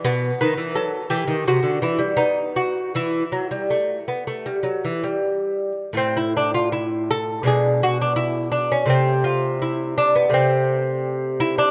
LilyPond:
<<
  \new Staff \with { instrumentName = "Lute" } { \time 4/4 \key e \minor \tempo 4 = 83 b8 b'8 a'8 g'8 fis'8 e'8 dis'8 fis'8 | e'2. r4 | \key a \minor c'16 e'16 d'16 f'16 e'8 a'8 gis'8 fis'16 d'16 e'8 d'16 cis'16 | c'8 f'8 e'8 d'16 b16 c'4. e'16 d'16 | }
  \new Staff \with { instrumentName = "Lute" } { \clef bass \time 4/4 \key e \minor b,8 dis16 e16 fis8 e16 dis16 c16 d16 e16 g16 b4 | e8 fis16 g16 a8 b16 a16 g16 fis16 e16 g4~ g16 | \key a \minor <a, a>2 <b, gis d'>2 | <c a>2 <c a>2 | }
>>